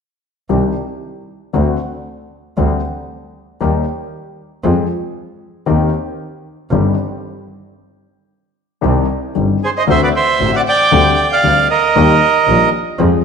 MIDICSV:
0, 0, Header, 1, 5, 480
1, 0, Start_track
1, 0, Key_signature, -3, "minor"
1, 0, Tempo, 520382
1, 458, Time_signature, 4, 2, 24, 8
1, 12217, End_track
2, 0, Start_track
2, 0, Title_t, "Violin section"
2, 0, Program_c, 0, 48
2, 8895, Note_on_c, 0, 72, 52
2, 8943, Note_off_c, 0, 72, 0
2, 9010, Note_on_c, 0, 75, 58
2, 9059, Note_off_c, 0, 75, 0
2, 9136, Note_on_c, 0, 76, 67
2, 9236, Note_off_c, 0, 76, 0
2, 9243, Note_on_c, 0, 74, 57
2, 9294, Note_off_c, 0, 74, 0
2, 9363, Note_on_c, 0, 76, 63
2, 9692, Note_off_c, 0, 76, 0
2, 9719, Note_on_c, 0, 78, 62
2, 9771, Note_off_c, 0, 78, 0
2, 9840, Note_on_c, 0, 79, 68
2, 10396, Note_off_c, 0, 79, 0
2, 10433, Note_on_c, 0, 77, 63
2, 10763, Note_off_c, 0, 77, 0
2, 10792, Note_on_c, 0, 75, 56
2, 11705, Note_off_c, 0, 75, 0
2, 12217, End_track
3, 0, Start_track
3, 0, Title_t, "Bandoneon"
3, 0, Program_c, 1, 23
3, 8888, Note_on_c, 1, 68, 53
3, 8905, Note_on_c, 1, 72, 59
3, 8938, Note_off_c, 1, 68, 0
3, 8951, Note_off_c, 1, 72, 0
3, 9020, Note_on_c, 1, 72, 51
3, 9034, Note_on_c, 1, 75, 62
3, 9068, Note_off_c, 1, 72, 0
3, 9078, Note_off_c, 1, 75, 0
3, 9130, Note_on_c, 1, 72, 59
3, 9141, Note_on_c, 1, 76, 73
3, 9233, Note_off_c, 1, 72, 0
3, 9238, Note_off_c, 1, 76, 0
3, 9254, Note_on_c, 1, 71, 51
3, 9259, Note_on_c, 1, 74, 66
3, 9303, Note_off_c, 1, 71, 0
3, 9306, Note_off_c, 1, 74, 0
3, 9373, Note_on_c, 1, 72, 57
3, 9375, Note_on_c, 1, 76, 78
3, 9697, Note_off_c, 1, 72, 0
3, 9733, Note_off_c, 1, 76, 0
3, 9743, Note_on_c, 1, 74, 55
3, 9745, Note_on_c, 1, 78, 76
3, 9789, Note_off_c, 1, 74, 0
3, 9791, Note_off_c, 1, 78, 0
3, 9853, Note_on_c, 1, 74, 58
3, 9863, Note_on_c, 1, 79, 86
3, 10402, Note_off_c, 1, 74, 0
3, 10446, Note_on_c, 1, 77, 85
3, 10451, Note_on_c, 1, 74, 63
3, 10461, Note_off_c, 1, 79, 0
3, 10770, Note_off_c, 1, 77, 0
3, 10773, Note_off_c, 1, 74, 0
3, 10797, Note_on_c, 1, 75, 69
3, 10801, Note_on_c, 1, 70, 59
3, 11708, Note_off_c, 1, 75, 0
3, 11710, Note_off_c, 1, 70, 0
3, 12217, End_track
4, 0, Start_track
4, 0, Title_t, "Grand piano"
4, 0, Program_c, 2, 0
4, 454, Note_on_c, 2, 51, 47
4, 455, Note_on_c, 2, 48, 57
4, 456, Note_on_c, 2, 36, 54
4, 456, Note_on_c, 2, 55, 45
4, 458, Note_on_c, 2, 60, 39
4, 460, Note_on_c, 2, 67, 56
4, 660, Note_off_c, 2, 48, 0
4, 660, Note_off_c, 2, 51, 0
4, 661, Note_off_c, 2, 36, 0
4, 661, Note_off_c, 2, 55, 0
4, 662, Note_off_c, 2, 60, 0
4, 663, Note_off_c, 2, 67, 0
4, 1414, Note_on_c, 2, 50, 62
4, 1415, Note_on_c, 2, 38, 60
4, 1416, Note_on_c, 2, 57, 51
4, 1419, Note_on_c, 2, 66, 53
4, 1421, Note_on_c, 2, 60, 46
4, 1620, Note_off_c, 2, 38, 0
4, 1620, Note_off_c, 2, 57, 0
4, 1622, Note_off_c, 2, 66, 0
4, 1623, Note_off_c, 2, 50, 0
4, 1623, Note_off_c, 2, 60, 0
4, 2374, Note_on_c, 2, 38, 60
4, 2374, Note_on_c, 2, 55, 51
4, 2375, Note_on_c, 2, 60, 45
4, 2376, Note_on_c, 2, 50, 62
4, 2378, Note_on_c, 2, 67, 55
4, 2577, Note_off_c, 2, 38, 0
4, 2577, Note_off_c, 2, 55, 0
4, 2578, Note_off_c, 2, 60, 0
4, 2579, Note_off_c, 2, 50, 0
4, 2579, Note_off_c, 2, 67, 0
4, 3325, Note_on_c, 2, 51, 62
4, 3328, Note_on_c, 2, 55, 50
4, 3330, Note_on_c, 2, 39, 62
4, 3331, Note_on_c, 2, 67, 65
4, 3334, Note_on_c, 2, 58, 48
4, 3530, Note_off_c, 2, 55, 0
4, 3531, Note_off_c, 2, 39, 0
4, 3532, Note_off_c, 2, 51, 0
4, 3532, Note_off_c, 2, 67, 0
4, 3533, Note_off_c, 2, 58, 0
4, 4280, Note_on_c, 2, 53, 66
4, 4282, Note_on_c, 2, 41, 67
4, 4283, Note_on_c, 2, 56, 53
4, 4284, Note_on_c, 2, 60, 52
4, 4286, Note_on_c, 2, 68, 58
4, 4481, Note_off_c, 2, 41, 0
4, 4482, Note_off_c, 2, 56, 0
4, 4482, Note_off_c, 2, 60, 0
4, 4483, Note_off_c, 2, 53, 0
4, 4483, Note_off_c, 2, 68, 0
4, 5222, Note_on_c, 2, 51, 72
4, 5222, Note_on_c, 2, 58, 53
4, 5224, Note_on_c, 2, 39, 67
4, 5226, Note_on_c, 2, 67, 62
4, 5227, Note_on_c, 2, 60, 53
4, 5431, Note_off_c, 2, 58, 0
4, 5432, Note_off_c, 2, 39, 0
4, 5433, Note_off_c, 2, 51, 0
4, 5433, Note_off_c, 2, 60, 0
4, 5433, Note_off_c, 2, 67, 0
4, 6194, Note_on_c, 2, 51, 52
4, 6196, Note_on_c, 2, 55, 50
4, 6198, Note_on_c, 2, 60, 51
4, 6199, Note_on_c, 2, 43, 64
4, 6201, Note_on_c, 2, 31, 66
4, 6201, Note_on_c, 2, 67, 61
4, 6397, Note_off_c, 2, 51, 0
4, 6398, Note_off_c, 2, 55, 0
4, 6399, Note_off_c, 2, 60, 0
4, 6400, Note_off_c, 2, 43, 0
4, 6401, Note_off_c, 2, 31, 0
4, 6401, Note_off_c, 2, 67, 0
4, 8129, Note_on_c, 2, 51, 52
4, 8133, Note_on_c, 2, 48, 62
4, 8133, Note_on_c, 2, 55, 52
4, 8135, Note_on_c, 2, 36, 68
4, 8135, Note_on_c, 2, 67, 64
4, 8136, Note_on_c, 2, 60, 52
4, 8341, Note_off_c, 2, 51, 0
4, 8343, Note_off_c, 2, 48, 0
4, 8343, Note_off_c, 2, 55, 0
4, 8344, Note_off_c, 2, 36, 0
4, 8344, Note_off_c, 2, 60, 0
4, 8344, Note_off_c, 2, 67, 0
4, 8623, Note_on_c, 2, 51, 38
4, 8624, Note_on_c, 2, 55, 34
4, 8626, Note_on_c, 2, 31, 47
4, 8626, Note_on_c, 2, 43, 43
4, 8628, Note_on_c, 2, 60, 36
4, 8630, Note_on_c, 2, 67, 42
4, 8828, Note_off_c, 2, 51, 0
4, 8828, Note_off_c, 2, 55, 0
4, 8829, Note_off_c, 2, 31, 0
4, 8830, Note_off_c, 2, 43, 0
4, 8830, Note_off_c, 2, 60, 0
4, 8831, Note_off_c, 2, 67, 0
4, 9107, Note_on_c, 2, 50, 68
4, 9108, Note_on_c, 2, 57, 50
4, 9109, Note_on_c, 2, 38, 67
4, 9113, Note_on_c, 2, 60, 53
4, 9113, Note_on_c, 2, 66, 65
4, 9311, Note_off_c, 2, 57, 0
4, 9312, Note_off_c, 2, 38, 0
4, 9312, Note_off_c, 2, 50, 0
4, 9314, Note_off_c, 2, 60, 0
4, 9314, Note_off_c, 2, 66, 0
4, 9591, Note_on_c, 2, 33, 50
4, 9592, Note_on_c, 2, 50, 40
4, 9594, Note_on_c, 2, 57, 37
4, 9597, Note_on_c, 2, 45, 47
4, 9597, Note_on_c, 2, 60, 36
4, 9599, Note_on_c, 2, 66, 44
4, 9792, Note_off_c, 2, 33, 0
4, 9792, Note_off_c, 2, 50, 0
4, 9793, Note_off_c, 2, 57, 0
4, 9794, Note_off_c, 2, 60, 0
4, 9795, Note_off_c, 2, 45, 0
4, 9796, Note_off_c, 2, 66, 0
4, 10068, Note_on_c, 2, 50, 72
4, 10071, Note_on_c, 2, 55, 51
4, 10071, Note_on_c, 2, 60, 57
4, 10072, Note_on_c, 2, 38, 73
4, 10074, Note_on_c, 2, 67, 70
4, 10271, Note_off_c, 2, 38, 0
4, 10271, Note_off_c, 2, 55, 0
4, 10271, Note_off_c, 2, 60, 0
4, 10272, Note_off_c, 2, 50, 0
4, 10272, Note_off_c, 2, 67, 0
4, 10544, Note_on_c, 2, 38, 45
4, 10546, Note_on_c, 2, 55, 36
4, 10546, Note_on_c, 2, 60, 40
4, 10547, Note_on_c, 2, 50, 48
4, 10550, Note_on_c, 2, 67, 45
4, 10746, Note_off_c, 2, 38, 0
4, 10746, Note_off_c, 2, 55, 0
4, 10746, Note_off_c, 2, 60, 0
4, 10747, Note_off_c, 2, 50, 0
4, 10748, Note_off_c, 2, 67, 0
4, 11029, Note_on_c, 2, 51, 69
4, 11030, Note_on_c, 2, 55, 55
4, 11032, Note_on_c, 2, 39, 74
4, 11032, Note_on_c, 2, 58, 59
4, 11038, Note_on_c, 2, 67, 73
4, 11228, Note_off_c, 2, 55, 0
4, 11229, Note_off_c, 2, 58, 0
4, 11230, Note_off_c, 2, 39, 0
4, 11231, Note_off_c, 2, 51, 0
4, 11232, Note_off_c, 2, 67, 0
4, 11510, Note_on_c, 2, 51, 39
4, 11512, Note_on_c, 2, 34, 50
4, 11512, Note_on_c, 2, 55, 40
4, 11512, Note_on_c, 2, 67, 42
4, 11514, Note_on_c, 2, 46, 50
4, 11514, Note_on_c, 2, 58, 39
4, 11705, Note_off_c, 2, 51, 0
4, 11706, Note_off_c, 2, 34, 0
4, 11706, Note_off_c, 2, 55, 0
4, 11706, Note_off_c, 2, 67, 0
4, 11707, Note_off_c, 2, 46, 0
4, 11707, Note_off_c, 2, 58, 0
4, 11985, Note_on_c, 2, 53, 70
4, 11986, Note_on_c, 2, 56, 55
4, 11986, Note_on_c, 2, 60, 58
4, 11987, Note_on_c, 2, 41, 73
4, 11990, Note_on_c, 2, 68, 63
4, 12181, Note_off_c, 2, 41, 0
4, 12181, Note_off_c, 2, 53, 0
4, 12181, Note_off_c, 2, 56, 0
4, 12181, Note_off_c, 2, 60, 0
4, 12183, Note_off_c, 2, 68, 0
4, 12217, End_track
5, 0, Start_track
5, 0, Title_t, "Double bass"
5, 0, Program_c, 3, 43
5, 458, Note_on_c, 3, 36, 63
5, 662, Note_off_c, 3, 36, 0
5, 1424, Note_on_c, 3, 38, 66
5, 1624, Note_off_c, 3, 38, 0
5, 2377, Note_on_c, 3, 38, 68
5, 2579, Note_off_c, 3, 38, 0
5, 3332, Note_on_c, 3, 39, 64
5, 3532, Note_off_c, 3, 39, 0
5, 4278, Note_on_c, 3, 41, 78
5, 4479, Note_off_c, 3, 41, 0
5, 5231, Note_on_c, 3, 39, 68
5, 5435, Note_off_c, 3, 39, 0
5, 6191, Note_on_c, 3, 31, 78
5, 6396, Note_off_c, 3, 31, 0
5, 8146, Note_on_c, 3, 36, 71
5, 8349, Note_off_c, 3, 36, 0
5, 8634, Note_on_c, 3, 31, 50
5, 8834, Note_off_c, 3, 31, 0
5, 9110, Note_on_c, 3, 38, 77
5, 9312, Note_off_c, 3, 38, 0
5, 9594, Note_on_c, 3, 33, 56
5, 9793, Note_off_c, 3, 33, 0
5, 10076, Note_on_c, 3, 38, 78
5, 10273, Note_off_c, 3, 38, 0
5, 10553, Note_on_c, 3, 38, 55
5, 10750, Note_off_c, 3, 38, 0
5, 11032, Note_on_c, 3, 39, 78
5, 11229, Note_off_c, 3, 39, 0
5, 11506, Note_on_c, 3, 34, 57
5, 11703, Note_off_c, 3, 34, 0
5, 11982, Note_on_c, 3, 41, 82
5, 12179, Note_off_c, 3, 41, 0
5, 12217, End_track
0, 0, End_of_file